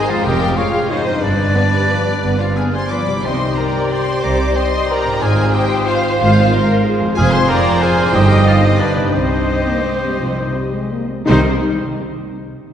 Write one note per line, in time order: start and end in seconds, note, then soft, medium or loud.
0.00 0.18 G#2 medium
0.00 0.10 G#3 medium
0.00 0.22 D#4 medium
0.00 0.11 G#4 loud
0.00 0.24 C5 medium
0.00 0.25 C5 loud
0.00 0.11 D#5 loud
0.00 0.11 G#5 loud
0.07 1.15 F2 medium
0.07 0.25 F4 loud
0.07 0.24 F4 loud
0.07 0.26 D5 loud
0.07 0.25 F5 loud
0.07 0.26 F5 loud
0.11 1.17 G#3 medium
0.16 1.20 C#4 medium
0.21 1.22 C#5 medium
0.21 0.57 G5 loud
0.21 0.58 G5 loud
0.25 0.52 F1 loud
0.25 0.52 F2 loud
0.25 0.56 G4 loud
0.25 0.57 G4 loud
0.25 0.57 A#4 loud
0.25 0.59 D#5 loud
0.57 0.69 G#3 medium
0.57 0.92 F4 loud
0.57 0.69 F4 medium
0.57 0.91 F4 loud
0.57 0.91 G#4 loud
0.57 0.70 C#5 medium
0.57 0.92 C#5 loud
0.57 0.90 F5 loud
0.57 0.92 F5 loud
0.90 1.03 G#3 medium
0.90 1.25 D#4 loud
0.90 1.23 D#4 medium
0.90 1.03 F4 medium
0.90 1.22 C5 loud
0.90 1.23 C5 medium
0.90 1.02 C#5 medium
0.90 1.22 D#5 loud
0.90 1.24 D#5 loud
1.05 3.17 G2 medium
1.10 3.10 G3 medium
1.14 3.21 D4 medium
1.19 1.50 G2 loud
1.19 2.37 D4 loud
1.19 3.23 B4 medium
1.19 3.08 B4 medium
1.23 1.50 G1 medium
1.23 2.41 D4 loud
1.23 2.41 B4 loud
1.23 2.15 D5 medium
1.23 2.39 D5 loud
1.55 1.63 B3 loud
1.55 1.68 B4 medium
1.72 1.90 G3 medium
1.89 2.06 F3 medium
1.89 2.02 B4 medium
2.06 2.14 G3 medium
2.22 2.51 G1 medium
2.22 2.51 G2 medium
2.22 2.39 B3 loud
2.38 2.56 C4 medium
2.38 2.46 F4 medium
2.38 2.59 F4 medium
2.38 2.58 D5 medium
2.38 2.57 F5 medium
2.38 2.57 F5 loud
2.55 2.73 B3 loud
2.55 2.74 G#4 medium
2.55 2.76 G#4 medium
2.55 2.69 B4 medium
2.55 2.76 F5 medium
2.55 2.63 G#5 medium
2.55 2.74 G#5 medium
2.73 2.91 G3 medium
2.73 2.91 C5 medium
2.73 2.93 C5 medium
2.73 2.93 G#5 medium
2.73 2.93 C6 medium
2.73 2.91 C6 loud
2.90 3.08 F3 medium
2.90 3.04 B4 medium
2.90 3.24 D5 medium
2.90 3.25 D5 loud
2.90 3.27 B5 medium
2.90 3.24 D6 loud
3.06 5.15 C3 medium
3.06 3.24 G3 medium
3.11 5.17 G3 medium
3.15 7.05 D#4 medium
3.20 5.18 D#3 medium
3.20 5.18 G4 medium
3.20 5.17 C5 medium
3.20 3.55 D#5 medium
3.24 3.52 C2 medium
3.24 3.52 C3 loud
3.24 3.59 C5 loud
3.24 5.19 C5 medium
3.24 3.57 C5 medium
3.24 3.57 G5 medium
3.24 3.56 C6 medium
3.24 3.57 C6 loud
3.56 3.93 A#4 medium
3.56 3.92 A#4 medium
3.56 4.22 D5 medium
3.56 3.91 G5 loud
3.56 3.90 A#5 loud
3.56 3.91 A#5 medium
3.91 4.23 C5 medium
3.91 4.24 C5 loud
3.91 4.23 G5 loud
3.91 4.24 C6 loud
3.91 4.23 C6 loud
4.23 4.50 C2 medium
4.23 4.50 C3 medium
4.23 4.55 C5 medium
4.23 4.55 D5 loud
4.23 4.56 D5 loud
4.23 4.58 A#5 loud
4.23 4.58 D6 medium
4.23 4.56 D6 loud
4.55 4.90 C5 loud
4.55 4.93 C5 loud
4.55 4.90 D#5 loud
4.55 4.90 G5 loud
4.55 4.90 C6 loud
4.55 4.89 C6 loud
4.90 5.23 A#4 loud
4.90 5.24 A#4 loud
4.90 5.23 D5 medium
4.90 5.24 G5 loud
4.90 5.22 A#5 loud
4.90 5.23 A#5 loud
5.04 7.09 G#2 medium
5.09 7.03 C4 medium
5.14 7.07 F4 medium
5.18 7.12 C5 medium
5.18 6.52 C5 loud
5.18 7.13 C5 medium
5.18 5.54 G#5 loud
5.18 5.55 G#5 loud
5.22 5.49 G#1 loud
5.22 5.49 G#2 loud
5.22 7.13 D#3 medium
5.22 7.13 F4 medium
5.22 5.54 G#4 loud
5.22 5.56 G#4 loud
5.22 5.56 F5 loud
5.54 5.88 G4 loud
5.54 5.87 G4 loud
5.54 5.88 D#5 loud
5.54 5.89 G5 loud
5.54 5.87 G5 loud
5.87 6.18 F4 loud
5.87 6.19 F4 loud
5.87 6.19 C5 loud
5.87 6.17 F5 loud
5.87 6.18 F5 loud
6.18 6.46 G#1 loud
6.18 6.46 G#2 loud
6.18 6.68 F4 loud
6.18 6.68 C5 loud
6.18 6.67 F5 loud
6.51 6.85 A#4 loud
6.85 7.17 G#4 loud
6.99 8.07 F2 medium
7.04 8.00 C4 medium
7.08 8.11 F4 medium
7.13 8.80 C5 medium
7.13 8.81 C5 loud
7.13 7.22 G#5 loud
7.13 7.31 G#5 loud
7.17 7.43 F1 loud
7.17 7.43 F2 loud
7.17 8.12 F3 loud
7.17 8.12 F4 loud
7.17 7.31 G#4 loud
7.17 7.34 G#4 loud
7.17 7.48 C5 loud
7.17 7.34 F5 loud
7.32 7.49 C5 loud
7.32 7.51 C5 loud
7.32 7.50 G#5 loud
7.32 7.50 C6 loud
7.32 7.49 C6 loud
7.49 7.83 A#4 loud
7.49 7.85 A#4 loud
7.49 7.82 D5 loud
7.49 7.84 G5 loud
7.49 7.83 A#5 loud
7.49 7.82 A#5 loud
7.81 8.14 G#4 loud
7.81 8.14 C5 loud
7.81 8.15 F5 loud
7.81 8.15 G#5 loud
7.81 8.14 G#5 loud
7.96 8.61 G2 medium
8.01 8.75 C4 medium
8.05 8.77 D#4 medium
8.10 8.41 G2 loud
8.10 8.80 D#4 loud
8.10 8.75 G4 medium
8.10 8.46 G4 loud
8.10 8.80 D#5 loud
8.10 8.46 D#5 loud
8.10 8.48 G5 loud
8.10 8.46 G5 loud
8.14 8.41 G1 loud
8.14 9.13 G3 loud
8.14 8.46 G4 loud
8.46 8.63 F4 loud
8.46 8.66 F4 loud
8.46 8.54 D5 loud
8.46 8.63 F5 loud
8.46 8.64 F5 loud
8.62 9.06 G2 medium
8.62 8.80 D#4 loud
8.62 8.72 C5 medium
8.62 8.81 D#5 loud
8.62 8.80 D#5 loud
8.67 9.08 B3 medium
8.71 9.10 D4 medium
8.76 9.13 D4 medium
8.76 9.08 G4 medium
8.76 9.13 B4 medium
8.76 9.15 B4 medium
8.76 9.13 D5 medium
8.80 9.08 G1 medium
8.80 9.08 G2 medium
8.80 9.14 D4 medium
8.80 9.15 D4 loud
8.80 9.13 B4 medium
8.80 9.14 D5 loud
8.96 11.20 C3 medium
9.00 11.26 C4 medium
9.04 11.26 D#4 medium
9.09 11.26 G4 medium
9.13 9.43 C2 medium
9.13 9.42 C3 medium
9.13 9.45 G3 medium
9.13 10.92 C4 medium
9.13 9.45 D#4 medium
9.13 10.89 G4 medium
9.13 10.88 C5 medium
9.13 11.10 C5 medium
9.13 10.92 C5 loud
9.13 11.06 D#5 medium
9.49 9.66 C4 medium
9.67 9.85 A#3 medium
9.84 10.02 G#3 medium
10.03 10.20 G3 medium
10.20 10.49 C2 medium
10.20 10.49 C3 medium
10.20 10.37 F3 medium
10.37 10.55 D#3 medium
10.55 10.73 G3 medium
10.73 10.92 G#3 medium
10.92 11.10 A#3 medium
11.10 11.27 C4 medium
11.24 11.46 C2 loud
11.24 11.46 C3 medium
11.24 11.46 C3 loud
11.24 11.46 D#3 loud
11.24 11.41 G3 loud
11.24 11.46 G3 medium
11.24 11.46 C4 medium
11.24 11.46 C4 loud
11.24 11.40 D#4 loud
11.24 11.41 D#4 loud
11.24 11.46 D#4 medium
11.24 11.46 D#4 loud
11.24 11.46 C5 loud
11.24 11.41 C5 medium
11.24 11.41 C5 loud
11.29 11.46 G4 medium
11.29 11.46 D#5 medium